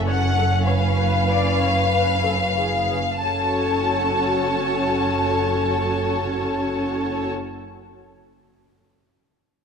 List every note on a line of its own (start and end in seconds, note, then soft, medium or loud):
0.00 2.95 F#1 soft
0.00 2.95 F#2 soft
0.00 2.96 C#4 soft
0.00 0.64 A4 soft
0.07 0.15 C#5 soft
0.07 0.66 F#5 soft
0.38 0.46 A4 soft
0.67 2.96 B4 soft
0.67 0.75 C#5 soft
0.67 3.19 F5 medium
0.98 1.28 B4 soft
1.29 1.60 D5 soft
1.60 1.92 C#5 soft
1.92 2.23 B4 soft
2.24 2.32 A4 soft
2.56 2.89 G#4 soft
3.22 7.29 F#1 soft
3.22 7.28 F#2 soft
3.22 7.29 C#4 soft
3.22 7.29 F#4 soft
3.22 7.30 A4 soft
3.22 7.29 C#5 soft
3.22 7.29 A5 soft